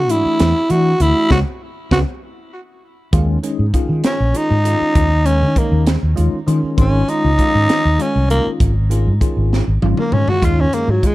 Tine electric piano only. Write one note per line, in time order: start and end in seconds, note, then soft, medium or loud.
0.09 0.52 E3 medium
0.09 0.52 A3 medium
0.09 0.52 D4 medium
0.09 0.52 F#4 medium
0.69 0.91 E3 medium
0.69 0.91 A3 medium
0.69 0.92 D4 medium
0.69 0.92 E4 medium
1.00 1.30 E3 medium
1.00 1.31 A3 medium
1.00 1.31 D4 medium
1.00 1.31 F#4 medium
1.30 1.40 G#3 medium
1.30 1.40 B3 medium
1.30 1.40 C#4 medium
1.91 2.01 G#3 medium
1.91 2.01 B3 medium
1.91 2.01 C#4 medium
3.13 3.37 D#3 medium
3.13 3.37 G#3 medium
3.13 3.38 C#4 medium
3.13 3.38 F4 medium
3.43 3.65 D#3 medium
3.43 3.65 G#3 medium
3.43 3.65 C#4 medium
3.43 3.65 G#4 medium
3.73 4.17 D#3 medium
3.73 4.17 G#3 medium
3.73 4.17 C#4 medium
3.73 4.17 F4 medium
4.33 4.56 D#3 medium
4.33 4.56 G#3 medium
4.33 4.56 C#4 medium
4.33 4.56 F4 medium
4.64 5.08 D#3 medium
4.64 5.08 G#3 medium
4.64 5.08 C#4 medium
4.64 5.08 F4 medium
5.25 5.47 D#3 medium
5.25 5.47 G#3 medium
5.25 5.47 C#4 medium
5.25 5.47 D#4 medium
5.56 5.99 D#3 medium
5.56 5.99 G#3 medium
5.56 5.99 C#4 medium
5.56 5.99 D#4 medium
6.16 6.38 D#3 medium
6.16 6.38 G#3 medium
6.16 6.38 C#4 medium
6.16 6.38 F4 medium
6.47 6.76 D#3 medium
6.47 6.76 G#3 medium
6.47 6.76 C#4 medium
6.47 6.77 F4 medium
6.77 7.02 D#3 medium
6.77 7.02 G#3 medium
6.77 7.02 C#4 medium
6.77 7.02 F4 medium
7.07 7.29 D#3 medium
7.07 7.29 G#3 medium
7.07 7.29 C#4 medium
7.07 7.30 F4 medium
7.37 7.81 D#3 medium
7.37 7.81 G#3 medium
7.37 7.81 C#4 medium
7.37 7.81 F4 medium
7.98 8.20 D#3 medium
7.98 8.20 G#3 medium
7.98 8.21 C#4 medium
7.98 8.21 F4 medium
8.29 8.72 D#3 medium
8.29 8.72 G#3 medium
8.29 8.72 C#4 medium
8.29 8.73 F4 medium
8.90 9.12 D#3 medium
8.90 9.12 G#3 medium
8.90 9.12 C#4 medium
8.90 9.12 F4 medium
9.20 9.63 D#3 medium
9.20 9.64 G#3 medium
9.20 9.64 C#4 medium
9.20 9.64 F4 medium
9.82 10.03 D#3 medium
9.82 10.03 G#3 medium
9.82 10.03 C#4 medium
9.82 10.03 F4 medium
10.12 10.40 D#3 medium
10.12 10.41 G#3 medium
10.12 10.41 C#4 medium
10.12 10.42 F4 medium
10.42 10.66 D#3 medium
10.42 10.66 G#3 medium
10.42 10.67 C#4 medium
10.42 10.67 F4 medium
10.72 10.94 D#3 medium
10.72 10.94 G#3 medium
10.72 10.94 C#4 medium
10.72 10.94 F4 medium
11.03 11.15 D#3 medium
11.03 11.15 G#3 medium
11.03 11.15 C#4 medium
11.03 11.15 F4 medium